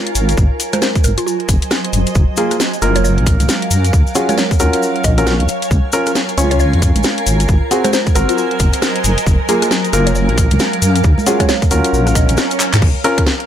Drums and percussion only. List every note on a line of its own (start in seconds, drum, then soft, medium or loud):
0.07 closed hi-hat medium
0.15 open hi-hat loud
0.15 cabasa medium
0.29 closed hi-hat medium
0.29 cabasa soft
0.37 kick loud
0.37 cabasa medium
0.60 open hi-hat loud
0.60 cabasa medium
0.73 cross-stick medium
0.73 closed hi-hat medium
0.73 high conga medium
0.73 cabasa soft
0.82 snare loud
0.82 cabasa medium
0.95 kick loud
0.95 closed hi-hat soft
0.95 cabasa soft
1.04 open hi-hat medium
1.04 cabasa medium
1.18 closed hi-hat medium
1.18 cabasa soft
1.27 cabasa medium
1.40 closed hi-hat soft
1.49 kick loud
1.49 open hi-hat loud
1.49 cabasa medium
1.62 closed hi-hat medium
1.62 cabasa soft
1.71 cross-stick medium
1.71 snare loud
1.71 cabasa soft
1.85 closed hi-hat soft
1.93 open hi-hat medium
1.93 cabasa medium
2.07 closed hi-hat medium
2.07 cabasa soft
2.15 kick loud
2.15 cabasa medium
2.37 open hi-hat loud
2.37 cabasa medium
2.51 cross-stick medium
2.51 closed hi-hat medium
2.51 cabasa soft
2.60 snare loud
2.60 cabasa medium
2.73 closed hi-hat soft
2.73 cabasa soft
2.82 open hi-hat medium
2.82 cabasa medium
2.96 closed hi-hat medium
2.96 cabasa soft
3.04 cabasa medium
3.18 closed hi-hat soft
3.26 kick loud
3.26 open hi-hat loud
3.26 cabasa loud
3.40 closed hi-hat medium
3.40 high conga medium
3.40 cabasa soft
3.49 snare loud
3.49 cabasa medium
3.62 closed hi-hat medium
3.71 open hi-hat medium
3.71 cabasa loud
3.85 closed hi-hat medium
3.85 cabasa soft
3.93 kick loud
3.93 cabasa medium
4.07 cabasa soft
4.15 open hi-hat loud
4.15 cabasa medium
4.29 cross-stick medium
4.29 closed hi-hat medium
4.29 high conga medium
4.29 cabasa soft
4.38 snare loud
4.38 cabasa medium
4.51 kick loud
4.51 closed hi-hat soft
4.51 cabasa soft
4.59 open hi-hat medium
4.59 cabasa medium
4.73 closed hi-hat medium
4.73 cabasa soft
4.83 cabasa soft
4.96 closed hi-hat soft
5.04 kick loud
5.04 open hi-hat loud
5.04 cabasa loud
5.18 closed hi-hat medium
5.18 cabasa soft
5.27 cross-stick medium
5.27 snare loud
5.27 cabasa medium
5.40 closed hi-hat medium
5.48 open hi-hat medium
5.48 cabasa medium
5.62 closed hi-hat medium
5.62 cabasa soft
5.71 kick loud
5.71 cabasa soft
5.92 open hi-hat loud
5.92 cabasa medium
6.06 cross-stick medium
6.06 closed hi-hat medium
6.06 cabasa soft
6.15 snare loud
6.15 cabasa medium
6.29 closed hi-hat soft
6.29 cabasa soft
6.38 open hi-hat medium
6.38 cabasa loud
6.51 closed hi-hat medium
6.51 cabasa soft
6.60 cabasa medium
6.73 closed hi-hat soft
6.82 kick loud
6.82 open hi-hat loud
6.82 cabasa medium
6.96 closed hi-hat medium
6.96 high conga medium
6.96 cabasa soft
7.03 snare loud
7.03 cabasa soft
7.18 closed hi-hat medium
7.27 open hi-hat medium
7.27 cabasa medium
7.40 closed hi-hat medium
7.40 cabasa soft
7.49 kick loud
7.49 cabasa soft
7.71 open hi-hat loud
7.71 cabasa medium
7.84 cross-stick medium
7.84 closed hi-hat medium
7.84 high conga medium
7.84 cabasa soft
7.93 snare loud
7.93 cabasa medium
8.06 kick loud
8.06 closed hi-hat soft
8.06 cabasa soft
8.16 open hi-hat medium
8.16 cabasa medium
8.29 closed hi-hat medium
8.29 cabasa soft
8.38 cabasa soft
8.51 closed hi-hat soft
8.59 kick loud
8.59 open hi-hat loud
8.59 cabasa medium
8.73 closed hi-hat medium
8.73 cabasa soft
8.82 cross-stick medium
8.82 snare loud
8.82 cabasa soft
8.96 closed hi-hat medium
9.04 open hi-hat medium
9.04 cabasa medium
9.18 closed hi-hat medium
9.18 cabasa soft
9.26 kick loud
9.26 cabasa soft
9.49 open hi-hat loud
9.49 cabasa medium
9.62 cross-stick medium
9.62 closed hi-hat medium
9.62 cabasa soft
9.71 snare loud
9.71 cabasa soft
9.85 closed hi-hat soft
9.85 cabasa soft
9.93 open hi-hat loud
9.93 cabasa medium
10.07 closed hi-hat medium
10.07 cabasa soft
10.15 cabasa soft
10.29 closed hi-hat soft
10.38 kick loud
10.38 open hi-hat loud
10.38 cabasa medium
10.51 closed hi-hat medium
10.51 high conga medium
10.51 cabasa soft
10.59 snare loud
10.59 cabasa soft
10.73 closed hi-hat medium
10.82 open hi-hat medium
10.82 cabasa medium
10.96 closed hi-hat medium
10.96 cabasa soft
11.04 kick loud
11.04 cabasa soft
11.18 high conga medium
11.18 cabasa soft
11.26 open hi-hat loud
11.26 cabasa medium
11.40 kick medium
11.40 cross-stick medium
11.40 closed hi-hat medium
11.40 high conga medium
11.40 cabasa soft
11.49 snare loud
11.49 cabasa medium
11.62 kick loud
11.62 closed hi-hat soft
11.62 cabasa soft
11.71 open hi-hat loud
11.71 cabasa medium
11.84 closed hi-hat medium
11.84 cabasa soft
11.94 cabasa medium
12.07 cross-stick medium
12.07 closed hi-hat soft
12.07 cabasa soft
12.15 kick loud
12.15 open hi-hat loud
12.15 cabasa medium
12.29 closed hi-hat medium
12.29 cabasa soft
12.37 cross-stick medium
12.37 snare loud
12.37 cabasa soft
12.51 closed hi-hat medium
12.51 cabasa soft
12.60 clap medium
12.60 open hi-hat loud
12.60 cabasa medium
12.73 clap loud
12.73 closed hi-hat medium
12.73 cabasa soft
12.82 kick loud
12.82 crash loud
13.04 open hi-hat loud
13.18 kick loud
13.18 cross-stick medium
13.18 closed hi-hat medium
13.27 snare loud
13.40 closed hi-hat soft